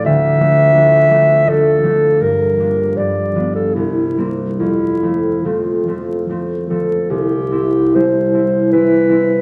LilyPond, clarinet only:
\new Staff \with { instrumentName = "Clarinet" } { \time 3/4 \key f \major \tempo 4 = 77 e''2 a'4 | bes'4 d''8. a'16 e'8. r16 | e'4 f'4 r8 a'8 | \key c \major g'4 c''4 b'4 | }